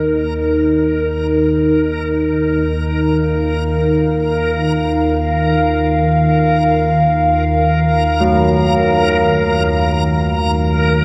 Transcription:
Already playing: synth drone D#2 D#3, analog synth pad D#4 A#4 D#5, synth texture A#4
1.17 synth texture A#4
3.01 analog synth pad F5
8.20 church bells F#3

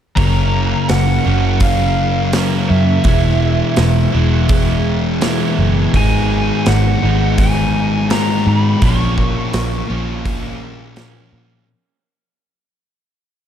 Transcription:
0.16 fingered electric bass F#1, overdriven electric guitar F#2 C#3 F#3 A#3 C#4, lead electric guitar A#5, kick, open hi-hat
0.89 fingered electric bass F#1, lead electric guitar F#5, snare, open hi-hat
1.25 fingered electric bass F#1, overdriven electric guitar F#2 C#3 F#3 A#3 C#4
1.60 lead electric guitar F5, kick, open hi-hat
2.32 overdriven electric guitar F#2 C#3 F#3 A#3 C#4, snare, open hi-hat
2.69 fingered electric bass F#2, lead electric guitar E5
3.04 fingered electric bass E1, distorted electric guitar E2 B2, overdriven electric guitar E3 G#3 B3 E4, kick, open hi-hat
3.08 distorted electric guitar E3
3.77 fingered electric bass E1, snare, open hi-hat
4.12 fingered electric bass E1, distorted electric guitar B2, overdriven electric guitar E3 G#3 B3 E4
4.16 distorted electric guitar E2
4.49 kick, open hi-hat
5.20 overdriven electric guitar E3 G#3 B3 E4, snare, open hi-hat
5.58 fingered electric bass F#1
5.93 fingered electric bass G#1, overdriven electric guitar G#2 D#3 G#3 B3 D#4, kick, open hi-hat
5.97 lead electric guitar G#5
6.66 fingered electric bass G#1, lead electric guitar F#5, snare, open hi-hat
7.03 fingered electric bass G#1, overdriven electric guitar G#2 D#3 G#3 B3 D#4
7.38 lead electric guitar G#5, kick, open hi-hat
8.10 overdriven electric guitar G#2 D#3 G#3 B3 D#4, lead electric guitar A#5, snare, open hi-hat
8.47 fingered electric bass G#2, lead electric guitar B5
8.82 fingered electric bass A#1, overdriven electric guitar A#2 F3 A#3 C#4, lead electric guitar C#6, kick, open hi-hat
9.18 kick
9.54 fingered electric bass A#1, snare, open hi-hat
9.90 fingered electric bass A#1, overdriven electric guitar A#2 F3 A#3 C#4
10.25 kick, open hi-hat
10.96 overdriven electric guitar A#2 F3 A#3 C#4, snare, open hi-hat
11.33 fingered electric bass A#2

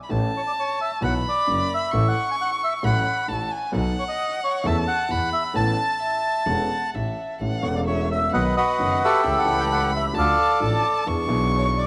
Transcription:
0.03 violin B5
0.09 grand piano A1 A2 E3 A3 C#4 A4, double bass A1, violin A5
0.37 bandoneon C#5
0.47 bandoneon D5
0.60 bandoneon C#5
0.81 bandoneon E5
1.01 grand piano B1 B2 E3 F#3 B3 F#4, double bass B1, bandoneon F#5, violin B5
1.29 bandoneon D5
1.47 grand piano F#1 F#2, double bass F#1
1.74 bandoneon E5
1.91 grand piano A1 A2 E3 A3 C#4 A4, double bass A1, violin C#6
2.08 bandoneon F#5
2.31 bandoneon G#5
2.41 bandoneon F#5
2.64 bandoneon E5
2.83 grand piano A1 A2 F#3 A3 C#4 A4, double bass A1, bandoneon F#5, violin B5
3.28 grand piano A1 A2, double bass A1, violin A5
3.51 violin G#5
3.72 grand piano B1 B2 F#3 B3 D#4 A4, double bass B1, violin F#5
3.99 bandoneon C#5
4.08 bandoneon D#5
4.44 bandoneon C#5
4.63 grand piano E2 E3 A3 C#4 A4, double bass E2, bandoneon E5, violin A5
4.88 bandoneon F#5
5.09 grand piano E2 E3, double bass E2, violin B5
5.33 bandoneon E5
5.53 grand piano A1 A2 E3 B3 C#4 A4, double bass A1, violin A5, bandoneon A5
5.99 violin E5
6.46 grand piano E1 E2 E3 B3 C#4 A4, double bass E1, violin F#5
6.95 grand piano A1 A2, double bass A1, violin E5
7.40 double bass A1, grand piano A1 A2 E3 A3 C#4 A4, violin F#5
7.61 grand piano E1 E2 E3 A3 C#4 A4, double bass E1, bandoneon C#5
7.76 bandoneon D5
7.87 bandoneon C#5, violin E5
8.11 bandoneon E5
8.32 grand piano B1 B2 D#3 F#3 B3 F#4, double bass B1, bandoneon B4 D#5 F#5, violin F#5
8.57 bandoneon F#4 B4 D#5
8.78 grand piano F#1 F#2 D#3 F#3 B3 F#4, double bass F#1
9.04 bandoneon G4 A4 E5
9.23 grand piano C#2 C#3 E3 A3 C#4 G4, double bass C#2, violin B5
9.38 bandoneon F#5
9.44 grand piano C#2 C#3 E3 A3 C#4, double bass C#2
9.48 grand piano G4
9.60 bandoneon G5
9.72 bandoneon F#5
9.96 bandoneon E5
10.13 grand piano D2 D3 F3 A3 D4 A4, double bass D2, violin A5
10.18 bandoneon A4 D5 F5
10.60 grand piano A1 A2 F3 A3 D4 A4, double bass A1, violin A5
11.06 grand piano E2 E3 B3 D4 G#4, double bass E2, violin C#6
11.26 grand piano B1 B2 E3 B3 D4 G#4, double bass B1
11.58 bandoneon C#5
11.78 bandoneon D5

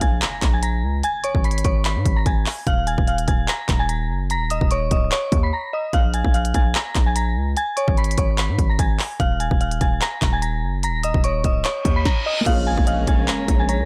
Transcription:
Already playing: impact
0.01 808-style bass A#1, synth bell G#5 G#6, kick, closed hi-hat
0.22 synth bell A#5 A#6, clap, closed hi-hat
0.42 808-style bass A#1, kick, clap, closed hi-hat
0.53 synth bell G#5 G#6
0.63 synth bell A#5 A#6, closed hi-hat
0.83 808-style bass C#2
1.03 synth bell G#5 G#6, closed hi-hat
1.24 synth bell C#5 C#6, closed hi-hat
1.35 808-style bass G#1, kick
1.44 synth bell B5 B6, closed hi-hat
1.51 closed hi-hat
1.58 closed hi-hat
1.64 808-style bass G#1, synth bell C#5 C#6, kick, closed hi-hat
1.85 synth bell B5 B6, clap, closed hi-hat
1.96 808-style bass G#2
2.05 808-style bass G#1, kick, closed hi-hat
2.16 synth bell A#5 A#6
2.26 808-style bass G#1, synth bell G#5 G#6, kick, closed hi-hat
2.46 clap, open hi-hat
2.67 808-style bass D#1, synth bell F5 F6, kick, closed hi-hat
2.87 synth bell G#5 G#6, closed hi-hat
2.98 808-style bass D#1, kick
3.07 synth bell F5 F6, closed hi-hat
3.18 closed hi-hat
3.28 808-style bass D#1, synth bell G#5 G#6, kick, closed hi-hat
3.48 synth bell A#5 A#6, clap, closed hi-hat
3.69 808-style bass D#1, kick, clap, closed hi-hat
3.79 synth bell G#5 G#6
3.89 synth bell A#5 A#6, closed hi-hat
4.10 808-style bass F#1
4.30 synth bell A#5 A#6, closed hi-hat
4.35 808-style bass D#1
4.50 synth bell D#5 D#6, closed hi-hat
4.61 808-style bass D#1, kick
4.71 synth bell C#5 C#6, closed hi-hat
4.91 808-style bass C#1, synth bell D#5 D#6, kick, closed hi-hat
5.12 synth bell C#5 C#6, clap, closed hi-hat
5.32 808-style bass D#2, kick, closed hi-hat
5.43 synth bell B5 B6
5.53 synth bell A#5 A#6
5.73 synth bell D#5 D#6
5.93 808-style bass A#1, synth bell F5 F6, kick, closed hi-hat
6.14 synth bell G#5 G#6, closed hi-hat
6.25 808-style bass A#1, kick
6.34 synth bell F5 F6, closed hi-hat
6.45 closed hi-hat
6.54 808-style bass A#1, synth bell G#5 G#6, kick, closed hi-hat
6.75 synth bell A#5 A#6, clap, closed hi-hat
6.95 808-style bass A#1, kick, clap, closed hi-hat
7.06 synth bell G#5 G#6
7.16 synth bell A#5 A#6, closed hi-hat
7.36 808-style bass C#2
7.57 synth bell G#5 G#6, closed hi-hat
7.77 synth bell C#5 C#6, closed hi-hat
7.88 808-style bass G#1, kick
7.97 synth bell B5 B6, closed hi-hat
8.04 closed hi-hat
8.11 closed hi-hat
8.18 808-style bass G#1, synth bell C#5 C#6, kick, closed hi-hat
8.38 synth bell B5 B6, clap, closed hi-hat
8.49 808-style bass G#2
8.59 808-style bass G#1, kick, closed hi-hat
8.69 synth bell A#5 A#6
8.79 808-style bass G#1, synth bell G#5 G#6, kick, closed hi-hat
8.99 clap, open hi-hat
9.20 808-style bass D#1, synth bell F5 F6, kick, closed hi-hat
9.40 synth bell G#5 G#6, closed hi-hat
9.51 808-style bass D#1, kick
9.61 synth bell F5 F6, closed hi-hat
9.71 closed hi-hat
9.81 808-style bass D#1, synth bell G#5 G#6, kick, closed hi-hat
10.01 synth bell A#5 A#6, clap, closed hi-hat
10.22 808-style bass D#1, kick, clap, closed hi-hat
10.33 synth bell G#5 G#6
10.42 synth bell A#5 A#6, closed hi-hat
10.63 808-style bass F#1
10.83 synth bell A#5 A#6, closed hi-hat
10.88 808-style bass D#1
11.03 synth bell D#5 D#6, closed hi-hat
11.14 808-style bass D#1, kick
11.24 synth bell C#5 C#6, closed hi-hat
11.44 808-style bass C#1, synth bell D#5 D#6, kick, closed hi-hat
11.65 synth bell C#5 C#6, clap, closed hi-hat, reverse cymbal
11.85 808-style bass D#2, kick, closed hi-hat
11.96 synth bell B5 B6
12.05 synth bell A#5 A#6, kick, snare
12.26 synth bell D#5 D#6
12.41 felt piano A#3 F4
12.46 808-style bass A#1, string section G#3 A#3 C#4, felt piano G#4, synth pluck F5, synth bell F5 F6, kick, closed hi-hat, crash, impact
12.52 felt piano C#5
12.67 synth bell G#5 G#6
12.78 808-style bass A#1, kick
12.87 synth pluck D#5, synth bell F5 F6, closed hi-hat
13.07 808-style bass A#1, synth bell G#5 G#6, kick, closed hi-hat
13.28 synth bell A#5 A#6, clap, closed hi-hat
13.48 808-style bass A#1, kick, closed hi-hat
13.59 synth bell G#5 G#6
13.69 synth pluck C#5, synth bell A#5 A#6, closed hi-hat
13.80 808-style bass C#2

